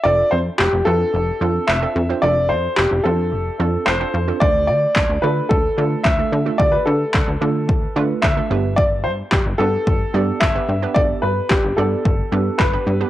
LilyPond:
<<
  \new Staff \with { instrumentName = "Grand piano" } { \time 4/4 \key f \lydian \tempo 4 = 110 d''8 c''8 g'8 a'4. e''4 | d''8 c''8 g'8 a'4. c''4 | d''8 d''4 b'8 a'4 e''4 | d''16 b'16 a'2~ a'8 e''4 |
d''8 c''8 g'8 a'4. e''4 | d''8 b'8 g'8 a'4. b'4 | }
  \new Staff \with { instrumentName = "Synth pluck" } { \time 4/4 \key f \lydian <c' d' f' a'>4~ <c' d' f' a'>16 r16 <c' d' f' b'>8. r16 <c' d' f' a'>8 r16 <c' d' f' a'>8 <c' d' f' c''>16 | <c' d' f' a'>4~ <c' d' f' a'>16 r16 <c' d' f' a'>8. r16 <c' d' f' a'>8 r16 <c' d' f' a'>8 <c' d' f' a'>16 | <a d' f' a'>4~ <a d' f' a'>16 r16 <a d' f' a'>8. r16 <a d' f' a'>8 r16 <a d' f' a'>8 <a d' f' a'>16 | <a d' f' g'>4~ <a d' f' g'>16 r16 <a d' f' a'>8. r16 <a d' f' b'>8 r16 <a d' f' a'>16 <b d' g' b'>8~ |
<b d' g' b'>4 r8 <b d' g' b'>8. r16 <b d' g' d''>8 r16 <b d' g' b'>8 <b d' g' b'>16 | <b d' g' a'>4~ <b d' g' a'>16 r16 <b d' g' d''>8. r16 <b d' g' b'>8 r16 <b d' g' b'>8 <b d' g' b'>16 | }
  \new Staff \with { instrumentName = "Analog synth bass" } { \clef bass \time 4/4 \key f \lydian f,,8 f,8 f,,16 f,,16 f,8 f,,8 f,8 f,,8 f,8 | f,,8 f,8 f,,16 f,,16 f,8 f,,8 f,8 f,,8 f,8 | d,8 d8 d,16 d,16 d8 d,8 d8 d,8 d8 | d,8 d8 d,16 d,16 d8 d,8 d8 d,8 g,,8~ |
g,,8 g,8 g,,16 g,,16 g,8 g,,8 g,8 g,,8 g,8 | g,,8 g,8 g,,16 g,,16 g,8 g,,8 g,8 g,,8 g,8 | }
  \new DrumStaff \with { instrumentName = "Drums" } \drummode { \time 4/4 r4 hc4 r4 hc4 | r4 hc4 r4 hc4 | bd4 <hc bd>4 bd4 <hc bd>4 | bd4 <hc bd>4 bd4 <hc bd>4 |
bd4 <hc bd>4 bd4 <hc bd>4 | bd4 <hc bd>4 bd4 <hc bd>4 | }
>>